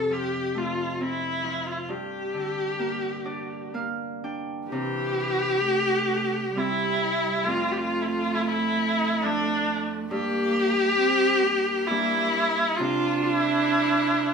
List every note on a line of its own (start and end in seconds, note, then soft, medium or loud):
0.00 1.91 F2 medium
0.00 1.91 C3 soft
0.00 0.14 A4 medium
0.10 1.42 F3 soft
0.10 0.60 G4 medium
0.55 2.85 A3 soft
0.55 1.03 F4 medium
1.00 4.00 C4 soft
1.00 1.68 E4 medium
1.43 1.91 F3 soft
1.67 1.73 F4 medium
1.72 1.79 E4 medium
1.77 1.92 F4 medium
1.89 4.74 G2 medium
1.89 3.75 G4 medium
2.34 4.74 D3 soft
2.79 3.73 A#3 soft
3.25 4.23 D4 soft
3.25 5.10 D5 soft
3.74 6.95 A#3 soft
3.74 5.41 F5 medium
4.24 7.04 D4 soft
4.24 5.79 G5 soft
4.68 7.50 C3 medium
4.68 5.59 E3 medium
4.68 6.60 G4 medium
5.65 6.52 A3 medium
6.55 7.50 G3 soft
6.55 7.46 G3 medium
6.55 9.56 C4 soft
6.55 7.53 E4 soft
6.55 7.46 E4 medium
7.44 10.16 F2 medium
7.44 10.11 A3 medium
7.44 7.74 F4 medium
7.72 7.79 G4 medium
7.78 8.03 F4 medium
8.02 8.07 E4 medium
8.02 8.36 F4 medium
8.35 8.43 E4 medium
8.41 8.49 F4 medium
8.47 9.23 E4 medium
9.22 10.16 F3 soft
9.22 11.96 A3 soft
9.22 9.89 D4 medium
9.22 11.90 D4 soft
10.11 12.84 G2 medium
10.11 10.97 A#3 loud
10.11 11.89 G4 loud
11.00 11.45 C4 medium
11.43 12.81 A#3 loud
11.87 12.84 G3 soft
11.87 14.34 A#3 soft
11.87 14.34 D4 soft
11.87 12.78 E4 medium
12.77 14.34 C3 medium
12.77 14.34 D4 loud
12.77 13.22 F4 medium
13.22 13.33 F4 medium
13.33 14.34 E4 medium